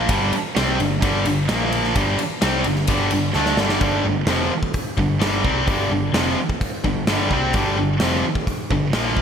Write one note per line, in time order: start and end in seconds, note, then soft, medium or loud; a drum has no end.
0.09 0.31 G1 medium
0.09 0.32 G2 loud
0.09 0.33 D3 medium
0.09 0.33 G3 medium
0.09 kick loud
0.09 ride medium
0.33 muted picked electric bass stroke soft
0.33 muted distorted electric guitar stroke medium
0.33 ride medium
0.56 0.78 C2 medium
0.56 0.79 C3 medium
0.56 0.79 G3 loud
0.56 0.79 C4 loud
0.56 snare loud
0.56 ride medium
0.80 1.01 G1 medium
0.80 0.99 G2 medium
0.80 0.99 D3 medium
0.80 ride medium
1.02 1.24 G1 medium
1.02 1.26 G2 loud
1.02 1.26 D3 loud
1.02 1.26 G3 loud
1.02 kick medium
1.02 ride medium
1.25 1.48 G1 medium
1.25 1.45 G2 medium
1.25 1.45 D3 medium
1.25 ride medium
1.49 1.93 A#1 medium
1.49 1.96 A#2 medium
1.49 1.96 F3 medium
1.49 1.96 A#3 loud
1.49 snare loud
1.49 ride medium
1.72 ride medium
1.84 snare soft
1.95 2.17 G1 medium
1.95 2.18 G2 medium
1.95 2.18 D3 loud
1.95 2.19 G3 loud
1.95 kick loud
1.95 ride medium
2.19 muted distorted electric guitar stroke medium
2.19 ride medium
2.41 2.64 C2 medium
2.41 2.64 C3 medium
2.41 2.65 G3 medium
2.41 2.65 C4 medium
2.41 snare loud
2.41 ride medium
2.64 2.87 G1 medium
2.64 2.84 G2 medium
2.64 2.84 D3 medium
2.64 ride medium
2.76 snare soft
2.87 3.10 G1 medium
2.87 3.11 G2 medium
2.87 3.11 D3 medium
2.87 3.11 G3 medium
2.87 kick medium
2.87 ride medium
3.11 3.34 G1 medium
3.11 3.31 G2 medium
3.11 3.31 D3 medium
3.11 ride medium
3.33 3.57 D2 medium
3.33 3.58 D3 medium
3.33 3.58 A3 medium
3.33 3.58 D4 medium
3.33 snare medium
3.46 snare medium
3.57 3.80 G1 medium
3.57 3.80 G2 medium
3.57 3.81 D3 medium
3.57 3.81 G3 medium
3.57 snare medium
3.69 snare medium
3.81 4.03 G1 medium
3.81 4.03 G2 medium
3.81 4.04 D3 medium
3.81 4.05 G3 medium
3.81 kick medium
3.81 open hi-hat soft
4.04 4.26 G1 medium
4.04 4.23 G2 soft
4.04 4.24 D3 medium
4.27 4.49 F1 medium
4.27 4.51 F2 medium
4.27 4.51 C3 medium
4.27 4.51 F3 loud
4.27 snare medium
4.27 open hi-hat soft
4.63 kick medium
4.74 kick medium
4.74 open hi-hat soft
4.97 5.20 G1 medium
4.97 5.16 G2 medium
4.97 5.17 D3 medium
4.97 kick medium
5.19 5.42 G1 medium
5.19 5.43 G2 medium
5.19 5.43 D3 medium
5.19 5.44 G3 medium
5.19 snare loud
5.19 open hi-hat soft
5.44 5.66 C2 medium
5.44 5.67 C3 medium
5.44 5.66 G3 medium
5.44 5.67 C4 medium
5.44 kick medium
5.66 5.89 G1 medium
5.66 5.89 G2 medium
5.66 5.90 D3 medium
5.66 5.90 G3 loud
5.66 kick loud
5.66 open hi-hat soft
5.90 6.12 G1 medium
5.90 6.09 G2 medium
5.90 6.10 D3 medium
6.13 6.35 F1 medium
6.13 6.37 F2 medium
6.13 6.37 C3 medium
6.13 6.37 F3 loud
6.13 snare loud
6.13 open hi-hat medium
6.49 kick medium
6.61 kick medium
6.61 open hi-hat soft
6.84 7.05 G1 medium
6.84 7.03 G2 medium
6.84 7.03 D3 medium
6.84 kick medium
7.06 7.28 G1 medium
7.06 7.31 G2 medium
7.06 7.31 D3 medium
7.06 7.31 G3 loud
7.06 snare medium
7.06 open hi-hat soft
7.31 7.52 C2 medium
7.31 7.54 C3 medium
7.31 7.55 G3 medium
7.31 7.55 C4 medium
7.31 kick medium
7.53 7.76 G1 medium
7.53 7.77 G2 medium
7.53 7.77 D3 medium
7.53 7.78 G3 medium
7.53 kick loud
7.53 open hi-hat soft
7.76 7.99 G1 medium
7.76 7.97 G2 medium
7.76 7.97 D3 medium
8.00 8.22 F1 medium
8.00 8.24 F2 loud
8.00 8.24 C3 loud
8.00 8.24 F3 loud
8.00 snare medium
8.00 open hi-hat soft
8.35 kick medium
8.47 kick medium
8.47 open hi-hat soft
8.71 8.92 G1 medium
8.71 8.90 G2 medium
8.71 8.90 D3 medium
8.71 kick medium
8.93 9.22 A#1 medium
8.93 9.22 A#2 medium
8.93 9.22 F3 medium
8.93 9.22 A#3 medium
8.93 snare loud
8.93 open hi-hat soft
9.17 kick medium